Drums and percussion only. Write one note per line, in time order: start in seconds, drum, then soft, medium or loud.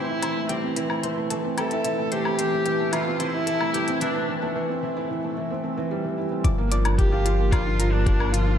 0.23 closed hi-hat medium
0.23 low woodblock medium
0.49 closed hi-hat soft
0.76 closed hi-hat medium
0.90 low woodblock medium
1.03 closed hi-hat soft
1.30 closed hi-hat medium
1.58 closed hi-hat soft
1.58 low woodblock medium
1.71 closed hi-hat soft
1.85 closed hi-hat medium
2.12 closed hi-hat soft
2.25 low woodblock medium
2.39 closed hi-hat medium
2.66 closed hi-hat soft
2.93 closed hi-hat medium
2.93 low woodblock medium
3.20 closed hi-hat soft
3.47 closed hi-hat medium
3.61 low woodblock medium
3.74 closed hi-hat soft
3.88 closed hi-hat soft
4.01 closed hi-hat medium
6.45 kick loud
6.45 closed hi-hat soft
6.72 closed hi-hat medium
6.85 closed hi-hat soft
6.85 low woodblock medium
6.98 kick medium
6.98 closed hi-hat soft
7.26 closed hi-hat medium
7.52 kick loud
7.52 closed hi-hat soft
7.52 low woodblock medium
7.80 closed hi-hat medium
8.06 kick loud
8.06 closed hi-hat soft
8.20 low woodblock medium
8.34 closed hi-hat medium